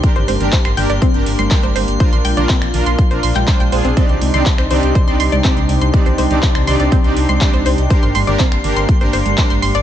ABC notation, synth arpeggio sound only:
X:1
M:4/4
L:1/16
Q:1/4=122
K:Cm
V:1 name="Synth arpeggio sound"
z c c z c c' g d C z2 c' z c c z | c c' g d C z2 c' z c c' g c' g c C | C z2 c' z c c z c c' c' d C z2 c' | z c c z c c' c' d C z2 c' z c c z |
c c' c' d C z2 c' z c c z c c' c' d |]